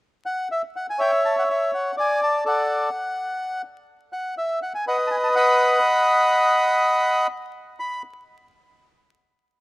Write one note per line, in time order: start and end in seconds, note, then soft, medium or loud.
0.26 0.48 F#5 medium
0.52 0.62 E5 medium
0.76 0.87 F#5 medium
0.90 1.00 G#5 medium
0.99 1.92 C#5 medium
0.99 1.49 E5 medium
0.99 1.11 G5 medium
1.25 1.35 A5 medium
1.39 1.43 F#5 medium
1.50 1.71 E5 medium
1.75 1.95 F#5 medium
1.97 2.44 D5 medium
1.97 2.20 G#5 medium
2.23 2.44 A5 medium
2.45 2.89 A4 soft
2.45 2.89 D5 soft
2.45 3.62 F#5 medium
4.13 4.35 F#5 medium
4.38 4.60 E5 medium
4.63 4.73 F#5 medium
4.75 4.85 G#5 medium
4.87 5.79 B4 medium
4.87 5.35 D#5 medium
4.87 4.97 F#5 medium
5.07 5.16 G#5 medium
5.07 5.09 A5 medium
5.24 5.28 A5 medium
5.36 7.27 D#5 medium
5.36 7.27 F#5 medium
5.36 7.27 B5 loud
7.80 8.02 B5 medium